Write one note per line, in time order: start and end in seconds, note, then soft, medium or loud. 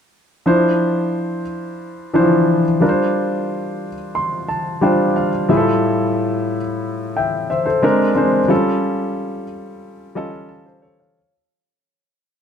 0.46 1.41 F3 medium
0.46 1.41 D4 medium
0.46 1.41 E4 medium
0.46 1.42 C5 medium
2.14 2.21 E3 medium
2.14 2.62 D4 medium
2.14 2.62 E4 medium
2.14 2.62 C5 medium
2.20 2.65 F3 medium
2.81 3.88 G3 medium
2.81 3.89 D4 medium
2.81 3.89 F4 medium
2.81 2.88 A#4 medium
2.89 3.92 C5 medium
4.15 4.46 C6 medium
4.49 4.80 A5 medium
4.81 5.29 G3 medium
4.81 5.30 D4 medium
4.81 5.30 F4 medium
4.81 5.30 C5 medium
4.81 5.14 G5 medium
5.16 5.47 F5 medium
5.49 6.56 A2 medium
5.49 6.56 G3 medium
5.49 6.56 E4 medium
5.49 6.57 F4 medium
5.49 5.56 G#4 medium
5.49 5.81 E5 medium
5.57 6.60 A4 medium
7.17 7.48 E5 soft
7.17 7.48 G5 medium
7.50 7.64 C5 medium
7.50 7.66 E5 medium
7.66 7.98 A4 soft
7.66 7.98 C5 medium
7.82 8.10 G#3 medium
7.82 8.10 C4 medium
7.82 8.10 D4 medium
7.82 8.10 A#4 medium
8.15 8.39 G#3 medium
8.15 8.39 C4 medium
8.15 8.40 D4 medium
8.15 8.40 C5 medium
8.48 9.43 G3 medium
8.48 9.44 C#4 medium
8.48 9.44 F4 medium
8.48 9.44 A4 medium
10.15 10.63 G3 medium
10.15 10.63 C#4 medium
10.15 10.64 F4 medium
10.15 10.50 A4 medium
10.15 10.32 D#5 medium
10.32 10.48 F5 medium
10.49 11.12 A5 medium
10.66 10.81 A4 soft
10.66 10.82 C5 medium
10.82 10.99 A4 soft
10.82 10.98 C#5 medium
11.00 11.32 C#5 soft
11.00 11.31 F5 soft